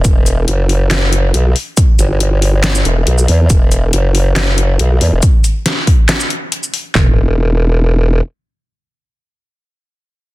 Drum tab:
HH |x-x-x-o-x-x-x-o-|x-x-x-o-x-x-x-o-|x-x-x-o-x-x-x-o-|x-x-x-o-x-x-x-o-|
SH |x-x-------------|x-x------x---x--|x-x-------------|x-x------x---x--|
CP |--------x-------|--------x-------|--------x-------|--------x-------|
SD |--------o-------|--------o-------|--------o-------|----o---o-------|
FT |----------------|----------------|----------------|----------------|
BD |o---------------|o---------------|o---------------|o-----o---------|

HH |----------------|----------------|
SH |----------------|----------------|
CP |x---------------|----------------|
SD |----------------|----------------|
FT |o---------------|----------------|
BD |o---------------|----------------|